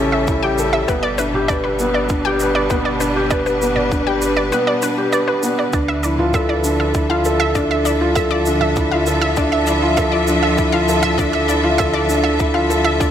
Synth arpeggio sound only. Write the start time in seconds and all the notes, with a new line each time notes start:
0.12 E5
0.43 G5
0.73 E5
0.88 B4
1.03 D5
1.18 B4
1.48 D5
1.64 B4
1.94 D5
2.25 G5
2.55 D5
2.70 B4
2.85 D5
3.00 B4
3.31 D5
3.46 B4
3.76 D5
4.07 G5
4.37 D5
4.52 B4
4.67 D5
4.83 B4
5.13 D5
5.28 B4
5.59 D5
5.74 D5
5.88 E5
6.03 D5
6.34 E5
6.49 D5
6.80 E5
7.10 F5
7.40 E5
7.55 D5
7.71 E5
7.85 D5
8.15 E5
8.31 D5
8.61 E5
8.92 F5
9.22 E5
9.37 D5
9.52 E5
9.67 D5
9.97 E5
10.12 D5
10.43 E5
10.72 F5
11.03 E5
11.18 D5
11.33 E5
11.48 D5
11.78 E5
11.93 D5
12.24 E5
12.54 F5
12.84 E5
13.00 D5